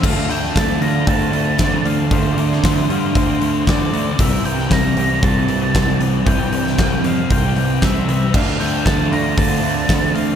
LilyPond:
<<
  \new Staff \with { instrumentName = "Lead electric guitar" } { \time 4/4 \key d \minor \tempo 4 = 116 f''8 g''8 a''8 bes''8 a''4. f''8 | c''2. d''4 | e''8 g''8 bes''4 a''4. r8 | g''4. f''8 g''4 e''8 e''8 |
f''8 g''8 a''8 bes''8 a''4. f''8 | }
  \new Staff \with { instrumentName = "Overdriven electric guitar" } { \time 4/4 \key d \minor <d d' f' a'>1~ | <d d' f' a'>1 | <c e g c' e' bes'>1~ | <c e g c' e' bes'>1 |
<d d' f' a'>1 | }
  \new Staff \with { instrumentName = "Clean electric guitar" } { \time 4/4 \key d \minor a8 a8 a8 f'8 c'8 a8 c'8 a8 | a8 a8 a8 f'8 c'8 a8 c'8 a8 | e8 e8 bes8 g'8 c'8 e8 c'8 e8 | e8 e8 bes8 g'8 c'8 e8 c'8 e8 |
a8 a8 a8 f'8 c'8 a8 c'8 a8 | }
  \new Staff \with { instrumentName = "Distorted electric guitar" } { \time 4/4 \key d \minor <d a d'>8 <a d'>8 <d a d'>8 <a d'>8 <d a d'>8 <a d'>8 <d a d'>8 <a d'>8 | <d a d'>8 <a d'>8 <d a d'>8 <a d'>8 <d a d'>8 <a d'>8 <d a d'>8 <a d'>8 | <c g c'>8 <g c'>8 <c g c'>8 <g c'>8 <c g c'>8 <g c'>8 <c g c'>8 <g c'>8 | <c g c'>8 <g c'>8 <c g c'>8 <g c'>8 <c g c'>8 <g c'>8 <c g c'>8 <g c'>8 |
<d a d'>8 <a d'>8 <d a d'>8 <a d'>8 <d a d'>8 <a d'>8 <d a d'>8 <a d'>8 | }
  \new Staff \with { instrumentName = "Picked electric bass" } { \clef bass \time 4/4 \key d \minor d,8 d,8 d,8 d,8 d,8 d,8 d,8 d,8 | d,8 d,8 d,8 g,8 d,8 d,8 d,8 d,8 | c,8 c,8 c,8 c,8 c,8 c,8 c,8 c,8 | c,8 c,8 c,8 f,8 c,8 c,8 c,8 c,8 |
d,8 d,8 d,8 d,8 d,8 d,8 d,8 d,8 | }
  \new DrumStaff \with { instrumentName = "Drums" } \drummode { \time 4/4 <cymc bd>8 hho16 sn16 <hho bd sn>8 hho8 <hho bd>8 hho8 <hho bd sn>8 hho8 | <hho bd>8 hho16 sn16 <hho bd sn>8 hho8 <hho bd>8 hho8 <hho bd sn>8 hho8 | <hho bd>8 hho16 sn16 <hho bd sn>8 hho8 <hho bd>8 hho8 <hho bd sn>8 hho8 | <hho bd>8 hho16 sn16 <hho bd sn>8 hho8 <hho bd>8 hho8 <hho bd sn>8 hho8 |
<cymc bd>8 hho8 <hho bd sn>8 hho8 <hho bd>8 hho8 <hho bd sn>8 hho8 | }
>>